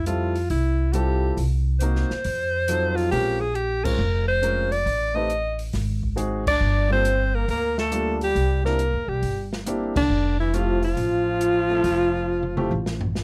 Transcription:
Already playing: F2
0.06 G3 C4 E4 F4 A4, closed hi-hat
0.35 open hi-hat
0.50 C2 E4, open hi-hat
0.93 G3 C4 E4 F4 G4 A4, closed hi-hat
1.37 C2, open hi-hat
1.80 A#3 C4 D#4 F#4 A#4 C5, closed hi-hat
1.95 snare
2.10 muted upright bass stroke, snare
2.24 F2, open hi-hat
2.68 F#3 C4 D#4 F4 A4, closed hi-hat
2.96 F4, open hi-hat
3.11 A#1 G#3 C4 C#4 F4 G4 A#4, open hi-hat
3.40 G#4
3.55 G4, closed hi-hat
3.84 G#3 C4 C#4 F4 A#4 C5, kick, crash
3.99 F1
4.28 C5
4.42 G#3 C4 C#4 F4 A#4, closed hi-hat
4.72 D5, open hi-hat
4.86 A1, open hi-hat
5.14 A3 C4 D#4 G4 B4 D#5
5.30 closed hi-hat
5.59 open hi-hat
5.73 G#1, snare, open hi-hat
6.03 kick
6.16 G#3 C4 D#4 F#4 G#4, closed hi-hat
6.47 D4 D5, kick, crash
6.61 G1
6.88 G3 A#3 C4 D4 F4 A4
6.93 C5
7.05 closed hi-hat
7.34 A#3 A#4
7.48 D2 A#3 A#4, open hi-hat
7.78 A3 A4, snare
7.91 G3 A#3 D4 F4 A4, closed hi-hat
8.21 G3 G4, open hi-hat
8.35 C2, open hi-hat
8.64 A#3 C4 D4 E4 G4 A#4, snare
8.79 closed hi-hat
8.94 E2
9.08 B1 G3 G4
9.22 G1, open hi-hat
9.53 snare
9.66 A#3 C4 D4 E4 G4, closed hi-hat
9.95 C2 D3 D4, kick, crash
10.09 F1
10.39 E3 E4
10.53 F3 A3 C4 E4 F4 G4, closed hi-hat
10.82 F3 F4, open hi-hat
10.97 A1, open hi-hat
11.41 closed hi-hat
11.70 A3 C4 E4 F4 A4
11.84 F1, open hi-hat
12.43 mid tom
12.57 A3 C4 E4 F4 G4, mid tom
12.71 A1, high tom
12.86 snare
13.01 floor tom
13.15 snare

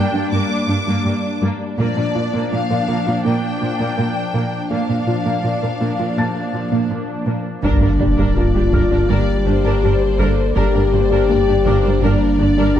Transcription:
Already playing: G3 A#3 D4 D5 G5
0.13 G2 A#3 D4
0.31 G2 G3 A#3 D6
0.68 G2 G3 D4
0.86 G2 G3 A#3
1.05 G2 A#3 G4
1.41 G2 G3 A#3
1.78 A#2 F3 A#3 D4 D5
1.97 A#2 A#3 D4
2.15 A#2 F3 F4
2.34 A#2 A#3
2.52 A#2 A#3 D4 F5
2.70 A#2 F3 A#4
2.88 A#2 A#3
3.07 A#2 A#3 F4
3.25 A#2 A#3 G5
3.61 A#2 F3 F4
3.80 A#2 A#3
3.97 A#2 A#3 A#4
4.34 A#2 A#3
4.71 A#2 F3 A#3 D4 D5 F5
4.89 A#2 A#3 D4
5.07 A#2 F3 F4
5.25 A#2 A#3
5.43 A#2 A#3 D4
5.62 A#2 F3 A#4
5.80 A#2 A#3
5.99 A#2 A#3 F4
6.17 A#2 A#3 A5 A6
6.54 A#2 F3 F4
6.71 A#2 A#3
6.90 A#2 A#3 A#4
7.26 A#2 A#3
7.63 G1 G2 G3 A#3 D4 A#4 D5, taiko, sub drop
7.82 G2 A#3 D4 A#4
7.99 G1 G2 D4 G4
8.17 G2 G3 D4 A#4
8.36 G1 G2 A#3 D4 F4 A#4
8.54 G2 D4 G4
8.73 G1 G2 G3 D4 A#4 F6, taiko
8.91 G2 D4 A#4
9.09 G1 G2 G3 D4 G4 A#4 D5
9.46 G1 G2 D4 G4 C5
9.64 G2 G3 D4 A#4
9.83 G1 G2 D4 G4 A#4
10.19 G1 G2 G3 D4 A4 A#4
10.55 G1 G2 G3 A#3 D4 G4 A#4 D5
10.74 G2 A#3 D4 A#4
10.92 G1 G2 D4 G4 C5
11.11 G2 G3 D4 A#4
11.29 G1 G2 A#3 D4 A#4 D5
11.47 G2 D4 G4
11.65 G1 G2 G3 D4 A#4 C5 D6
11.83 G2 D4 A#4
12.02 G1 G2 G3 D4 A#4
12.39 G1 G2 D4 G4 D5
12.58 G2 G3 D4 A#4
12.75 G1 D4 G4 A#4

